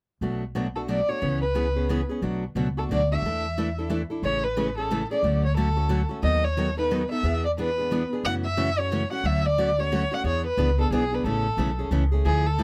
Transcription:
0.21 B1 B2 F#3 A3 D4 F#4
0.55 B2 F#3 A3 D4 F#4
0.76 A3 D4 F#4 A4
0.88 B2 F#3 A3 D4 F#4 D5
1.09 A3 D4 F#4 C#5
1.21 C#2 C#3 E3 B3 C#4 G#4
1.42 B4
1.54 C#3 E3 B3 C#4 G#4
1.76 B3 C#4 G#4
1.89 C#3 E3 B3 C#4 G#4
2.09 B3 C#4 G#4
2.22 B1 B2 F#3 A3 D4 F#4
2.55 C#2 B2 F#3 A3 D4 F#4
2.77 A3 D4 F#4 A4
2.89 D2 B2 F#3 A3 D4 F#4 D5
3.11 A3 D4 F#4 E5
3.22 E2 E3 A3 D4 E4 A4
3.58 E3 A3 D4 E4 A4
3.79 D4 E4 A4
3.90 E3 A3 D4 E4 A4
4.10 D4 E4 A4
4.22 A1 C#3 E3 A3 C#4 G#4 C#5
4.44 B4
4.57 C#3 E3 A3 C#4 G#4
4.78 A3 C#4 G#4 A4
4.91 C#3 E3 A3 C#4 G#4
5.11 A3 C#4 G#4 D5
5.23 D2 D3 F#3 A3 C#4 F#4
5.45 C#5
5.57 D3 F#3 A3 C#4 F#4 A4
5.77 A3 C#4 F#4
5.89 D3 F#3 A3 C#4 F#4
6.09 A3 C#4 F#4
6.23 D#2 D#3 F#3 B3 D#4 A4 D#5
6.44 C#5
6.57 D#3 F#3 B3 D#4 A4
6.77 B3 D#4 A4 B4
6.91 D#3 F#3 B3 D#4 A4
7.11 B3 D#4 A4 E5
7.23 E2 E3 B3 D4 G#4
7.45 D5
7.58 E3 B3 D4 G#4 B4
7.78 B3 D4 G#4
7.91 E3 B3 D4 G#4
8.13 B3 D4 G#4
8.24 F#2 C#3 E3 A3 C#4 F#4 F#5
8.45 E5
8.57 C#3 E3 A3 C#4 F#4
8.78 A3 C#4 F#4 C#5
8.92 C#3 E3 A3 C#4 F#4
9.11 A3 C#4 F#4 F#5
9.23 D2 D3 F#3 A3 C#4 F#4 E5
9.46 D5
9.58 D3 F#3 A3 C#4 F#4
9.78 A3 C#4 F#4 C#5
9.92 D3 F#3 A3 C#4 F#4
10.11 A3 C#4 F#4 F#5
10.24 E2 E3 B3 D4 G#4 C#5
10.47 B4
10.57 C#2 E3 B3 D4 G#4
10.78 B3 D4 G#4 A4
10.91 B1 E3 B3 D4 G#4
11.13 B3 D4 G#4 B4
11.24 A1 C#3 E3 A3 C#4 G#4 A4
11.57 B1 C#3 E3 A3 C#4 G#4
11.79 A3 C#4 G#4
11.91 C#2 C#3 E3 A3 C#4 G#4
12.12 A3 C#4 G#4
12.25 D2 D3 F3 A3 E4 G#4
12.46 A4
12.58 D3 F3 A3 E4

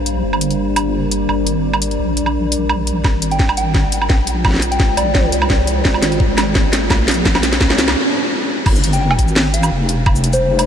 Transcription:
Already playing: A#1 G3 D4 A#4 D5
0.06 closed hi-hat
0.24 G1
0.33 low woodblock
0.41 closed hi-hat
0.51 closed hi-hat
0.76 closed hi-hat, low woodblock
1.11 closed hi-hat
1.29 G#1, low woodblock
1.47 closed hi-hat
1.74 low woodblock
1.82 closed hi-hat
1.91 closed hi-hat
1.99 A#1
2.17 closed hi-hat
2.26 low woodblock
2.52 closed hi-hat
2.69 low woodblock
2.87 closed hi-hat
3.04 G#1 G#3, kick, snare, riser, low woodblock
3.09 F4
3.22 closed hi-hat
3.31 G5, closed hi-hat
3.39 kick, snare
3.46 C5, low woodblock
3.57 G5, closed hi-hat
3.75 kick, snare
3.92 D#5, closed hi-hat
4.02 low woodblock
4.10 A#1, kick, snare
4.27 closed hi-hat
4.45 kick, snare, low woodblock
4.48 snare
4.50 snare
4.54 snare
4.56 snare
4.59 snare, closed hi-hat
4.71 G5, closed hi-hat
4.80 kick, snare
4.97 A#1 D5, closed hi-hat, low woodblock
5.15 kick, snare
5.32 C2, closed hi-hat
5.42 low woodblock
5.50 kick, snare
5.67 closed hi-hat
5.85 G#1, kick, snare
5.94 low woodblock
6.03 snare, closed hi-hat
6.12 closed hi-hat
6.20 kick
6.38 snare, closed hi-hat, low woodblock
6.55 kick, snare
6.73 snare, closed hi-hat
6.90 A#1, kick, snare, low woodblock
7.08 snare, closed hi-hat
7.11 closed hi-hat
7.14 closed hi-hat
7.25 kick, snare
7.35 snare, low woodblock
7.43 snare, closed hi-hat
7.53 snare, closed hi-hat
7.61 C2, kick, snare
7.70 snare
7.78 snare, closed hi-hat
7.88 snare, low woodblock
8.66 G1 G3, kick, crash, low woodblock
8.76 shaker
8.84 closed hi-hat
8.88 D4
8.93 G5, closed hi-hat, shaker
9.01 F#1 G5
9.11 D5, low woodblock
9.17 G#1 A#4, kick, closed hi-hat
9.28 shaker
9.36 snare
9.54 F5, closed hi-hat
9.63 low woodblock, shaker
9.72 F1
9.89 closed hi-hat
10.06 kick, low woodblock
10.16 shaker
10.24 closed hi-hat
10.33 C5, closed hi-hat, shaker
10.59 closed hi-hat, low woodblock

